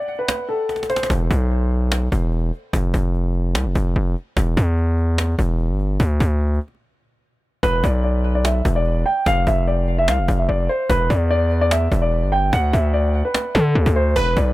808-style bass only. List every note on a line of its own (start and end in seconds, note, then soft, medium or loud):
1.10 1.30 E1 loud
1.31 2.09 B1 loud
2.12 2.51 E1 loud
2.73 2.93 F1 loud
2.94 3.56 F1 loud
3.55 3.67 C2 loud
3.66 3.75 F1 loud
3.75 3.95 F1 loud
3.96 4.15 F1 loud
4.37 4.56 E1 loud
4.57 5.35 E2 loud
5.39 5.71 E1 loud
5.70 5.98 G1 loud
6.00 6.19 D2 loud
6.20 6.59 D2 loud
7.63 7.83 E1 loud
7.84 8.62 B1 loud
8.65 9.04 E1 loud
9.26 9.46 F1 loud
9.47 10.09 F1 loud
10.08 10.20 C2 loud
10.19 10.28 F1 loud
10.28 10.48 F1 loud
10.49 10.68 F1 loud
10.90 11.09 E1 loud
11.10 11.88 E2 loud
11.92 12.24 E1 loud
12.23 12.51 G1 loud
12.53 12.72 D2 loud
12.73 13.23 D2 loud
13.55 13.74 D3 loud
13.75 13.86 D2 loud
13.86 14.15 D2 loud
14.16 14.36 E1 loud
14.37 14.53 B1 loud